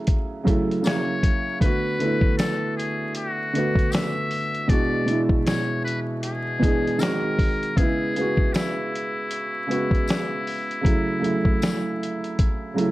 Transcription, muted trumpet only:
0.86 C#5
1.61 B4
2.38 A4
2.77 G#4
3.16 F#4
3.93 E5
4.70 D5
5.46 C#5
5.85 B4
6.23 G#4
7.00 A#4
7.78 G#4
8.54 E4

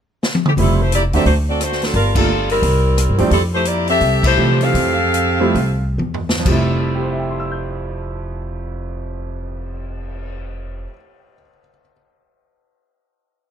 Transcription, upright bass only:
0.57 F1
1.13 D#2
1.26 D2
1.94 G1
2.62 C2
3.09 G2
3.20 E2
3.31 F2
4.01 C2
4.37 C3
4.74 F2
5.55 C2
5.98 E2
6.46 F1

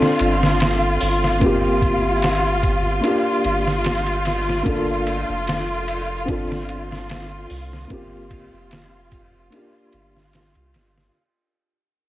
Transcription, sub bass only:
0.21 G1
1.02 G1
3.45 G1
4.66 G1
5.29 F1
6.29 G1
7.50 C2
7.91 G1
8.53 F1
9.94 G1
10.56 C2
10.74 G1

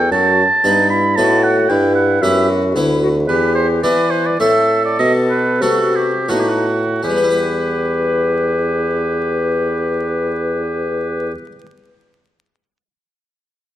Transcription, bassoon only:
Already playing: E2
0.11 F#2
0.64 G2
1.17 A2
1.70 G2
2.22 F#2
2.74 D2
3.27 E2
3.83 E3
4.40 A2
4.99 B2
5.61 C3
6.29 A2
7.03 E2

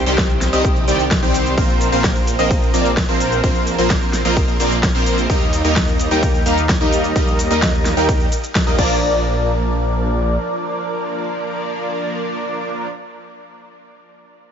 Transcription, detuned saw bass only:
0.06 C2
0.53 C2
0.88 C2
1.23 C2
1.58 A#1
1.92 A#1
2.39 A#1
2.74 A#1
3.09 A#1
3.44 A#1
3.79 A#1
4.25 A#1
4.60 A#1
4.95 A#1
5.30 D#2
5.64 D#2
6.11 D#2
6.46 D#2
6.81 D#2
7.16 D#2
7.51 D#2
7.97 D#2
8.67 D#2
8.79 A#1

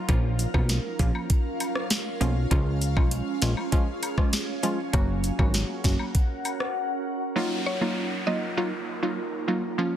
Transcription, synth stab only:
0.09 F3 A#3 C#4 F4
0.54 F3 A#3 C#4 F4
0.99 F3 A#3 C#4 F4
2.21 F3 A#3 C#4 F4
2.51 F3 G#3 C#4 F4
2.97 F3 G#3 C#4 F4
3.42 F3 G#3 C#4 F4
3.72 F3 G#3 C#4 F4
4.18 F3 G#3 C#4 F4
4.63 F3 G#3 C#4 F4
4.93 F#3 A#3 C#4 F#4
5.39 F#3 A#3 C#4 F#4
5.84 F#3 A#3 C#4 F#4
7.36 F#3 A#3 D#4 F4
7.81 F#3 A#3 D#4 F4
8.27 F#3 A#3 D#4 F4
8.57 F#3 A#3 D#4 F4
9.02 F#3 A#3 D#4 F4
9.48 F#3 A#3 D#4 F4
9.78 F3 A#3 C#4 F4

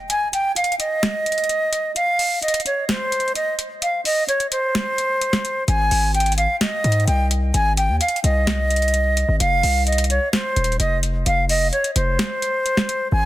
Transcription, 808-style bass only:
5.68 G#1
5.91 G#1
6.84 G#2
7.08 C2
7.54 G#1
7.89 D#2
8.24 C2
9.28 G#1
9.40 F1
9.63 C2
10.56 D#1
10.80 F1
11.26 F1
11.96 F1
13.12 G#1

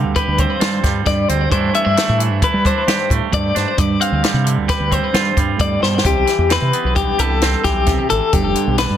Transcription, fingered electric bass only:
0.04 D2
0.28 D2
0.61 G3
0.84 G2
1.06 G2
1.29 D2
1.52 G2
1.86 G2
2.09 A2
2.31 G2
2.54 G3
2.88 G3
3.10 A2
3.33 G2
3.56 G2
3.78 G2
4.12 D2
4.34 C3
4.58 D2
4.80 D2
5.14 G3
5.37 G2
5.60 G2
5.82 G2
6.05 C2
6.16 B1
6.38 E2
6.62 C3
6.84 B1
7.19 C2
7.64 B1
8.11 G#1
8.33 G1
8.44 F1
8.67 B1
8.90 G2

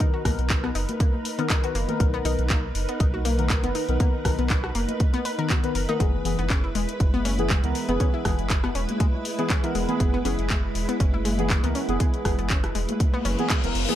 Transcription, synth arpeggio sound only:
0.00 D#4
0.14 F#4
0.25 A#3
0.64 B3
0.75 D#4
1.00 A#3
1.39 B3
1.50 D#4
1.64 F#4
1.75 A#3
2.14 B3
2.25 D#4
2.50 A#3
2.89 B3
3.00 D#4
3.14 F#4
3.25 A#3
3.64 B3
3.75 D#4
4.00 A#3
4.39 B3
4.50 D#4
4.64 F#4
4.75 A#3
5.14 B3
5.25 B4
5.39 A#4
5.50 F#4
5.75 A#4
5.89 D#4
6.00 G#3
6.39 B3
6.50 C#4
6.64 E4
6.75 G#3
7.14 B3
7.25 C#4
7.50 G#3
7.89 B3
8.00 C#4
8.14 E4
8.25 G#3
8.64 B3
8.75 C#4
9.00 G#3
9.39 B3
9.50 C#4
9.64 E4
9.75 G#3
10.14 B3
10.25 C#4
10.50 G#3
10.89 B3
11.00 C#4
11.14 E4
11.25 G#3
11.64 B3
11.75 C#4
12.00 G#3
12.39 B3
12.50 C#4
12.64 E4
12.75 G#3
13.14 B3
13.25 C#4
13.50 G#3
13.89 B3

